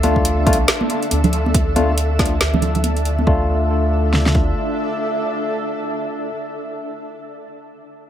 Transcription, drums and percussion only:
0.03 closed hi-hat medium
0.03 high conga medium
0.16 kick medium
0.25 closed hi-hat medium
0.47 kick loud
0.47 closed hi-hat soft
0.47 high conga medium
0.53 closed hi-hat medium
0.68 snare loud
0.68 closed hi-hat medium
0.81 high conga medium
0.90 closed hi-hat medium
1.03 closed hi-hat soft
1.11 closed hi-hat medium
1.11 high conga medium
1.24 closed hi-hat soft
1.24 low conga medium
1.33 closed hi-hat soft
1.46 high conga loud
1.54 kick loud
1.54 closed hi-hat medium
1.76 closed hi-hat medium
1.76 high conga loud
1.98 closed hi-hat medium
2.19 kick loud
2.19 snare medium
2.19 closed hi-hat soft
2.19 high conga medium
2.26 closed hi-hat medium
2.41 snare loud
2.41 closed hi-hat medium
2.54 high conga loud
2.54 low conga medium
2.62 closed hi-hat soft
2.62 low conga medium
2.75 closed hi-hat soft
2.75 low conga medium
2.84 closed hi-hat medium
2.84 high conga medium
2.97 closed hi-hat soft
3.05 closed hi-hat soft
3.19 high conga loud
3.27 kick loud
4.13 snare medium
4.26 snare medium
4.35 kick medium

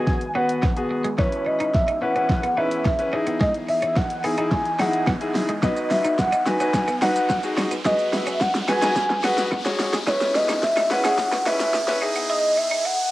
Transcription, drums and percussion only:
0.07 kick loud
0.07 snare medium
0.21 closed hi-hat soft
0.49 closed hi-hat medium
0.63 kick loud
0.63 snare medium
0.76 closed hi-hat medium
1.04 closed hi-hat medium
1.18 kick loud
1.18 snare medium
1.32 closed hi-hat medium
1.60 closed hi-hat medium
1.74 kick loud
1.74 snare medium
1.88 closed hi-hat medium
2.16 closed hi-hat medium
2.29 kick loud
2.29 snare medium
2.43 closed hi-hat medium
2.71 closed hi-hat medium
2.85 kick loud
2.85 snare medium
2.99 closed hi-hat medium
3.27 closed hi-hat medium
3.41 kick loud
3.41 snare medium
3.54 closed hi-hat medium
3.68 open hi-hat medium
3.82 closed hi-hat medium
3.96 kick loud
3.96 snare medium
4.10 closed hi-hat medium
4.24 open hi-hat medium
4.38 closed hi-hat medium
4.52 kick loud
4.52 snare medium
4.66 closed hi-hat soft
4.79 snare medium
4.79 open hi-hat medium
4.94 closed hi-hat medium
5.07 kick loud
5.07 snare medium
5.21 closed hi-hat medium
5.35 snare medium
5.35 open hi-hat medium
5.49 closed hi-hat medium
5.63 kick loud
5.63 snare medium
5.63 shaker medium
5.77 closed hi-hat medium
5.77 shaker medium
5.91 snare medium
5.91 open hi-hat medium
5.91 shaker soft
6.05 closed hi-hat medium
6.05 shaker medium
6.19 kick loud
6.19 snare medium
6.19 shaker medium
6.32 closed hi-hat medium
6.32 shaker medium
6.46 snare medium
6.46 open hi-hat medium
6.46 shaker medium
6.60 closed hi-hat medium
6.60 shaker medium
6.74 kick loud
6.74 snare loud
6.74 shaker medium
6.88 closed hi-hat medium
6.88 shaker medium
7.02 snare medium
7.02 open hi-hat medium
7.02 shaker medium
7.16 closed hi-hat medium
7.16 shaker medium
7.30 kick loud
7.30 snare medium
7.30 shaker medium
7.43 closed hi-hat medium
7.43 shaker medium
7.57 snare medium
7.57 open hi-hat medium
7.57 shaker medium
7.71 closed hi-hat medium
7.71 shaker medium
7.85 kick loud
7.85 snare loud
7.85 shaker medium
7.99 closed hi-hat medium
7.99 shaker medium
8.13 snare loud
8.13 open hi-hat medium
8.13 shaker soft
8.27 closed hi-hat medium
8.27 shaker medium
8.41 kick loud
8.41 snare loud
8.41 shaker medium
8.55 snare loud
8.55 closed hi-hat medium
8.55 shaker medium
8.68 snare loud
8.68 open hi-hat medium
8.68 shaker medium
8.82 snare loud
8.82 closed hi-hat medium
8.82 shaker medium
8.96 kick loud
8.96 snare loud
8.96 shaker medium
9.10 snare loud
9.10 closed hi-hat medium
9.10 shaker medium
9.24 snare loud
9.24 open hi-hat medium
9.24 shaker medium
9.38 snare loud
9.38 closed hi-hat medium
9.38 shaker medium
9.52 kick loud
9.52 snare loud
9.52 shaker medium
9.65 snare loud
9.65 closed hi-hat medium
9.65 shaker medium
9.80 snare loud
9.80 open hi-hat medium
9.80 shaker medium
9.93 snare loud
9.93 closed hi-hat medium
9.93 shaker medium
10.07 kick loud
10.07 snare loud
10.07 shaker medium
10.21 snare loud
10.21 closed hi-hat medium
10.21 shaker medium
10.35 snare loud
10.35 open hi-hat medium
10.35 shaker soft
10.49 snare loud
10.49 closed hi-hat medium
10.49 shaker medium
10.63 kick loud
10.63 snare loud
10.63 shaker medium
10.77 snare loud
10.77 closed hi-hat medium
10.77 shaker medium
10.91 snare loud
10.91 open hi-hat medium
10.91 shaker medium
11.05 snare loud
11.05 closed hi-hat medium
11.05 shaker medium
11.18 kick loud
11.18 snare loud
11.18 shaker medium
11.32 snare loud
11.32 closed hi-hat medium
11.32 shaker medium
11.46 snare loud
11.46 open hi-hat medium
11.46 shaker medium
11.60 snare loud
11.60 closed hi-hat medium
11.60 shaker medium
11.74 snare loud
11.74 shaker medium
11.88 snare loud
11.88 closed hi-hat medium
11.88 shaker medium
12.02 open hi-hat medium
12.02 shaker medium
12.16 closed hi-hat medium
12.16 shaker medium

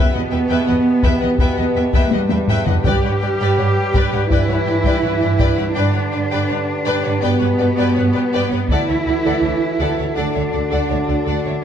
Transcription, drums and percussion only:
1.03 taiko medium
1.38 taiko medium
1.93 taiko medium
2.11 taiko high medium
2.29 taiko high medium
2.48 taiko low-mid medium
2.66 taiko low medium
2.84 taiko medium
3.94 taiko medium
4.30 taiko medium
4.85 taiko medium
5.39 taiko medium
8.69 taiko soft

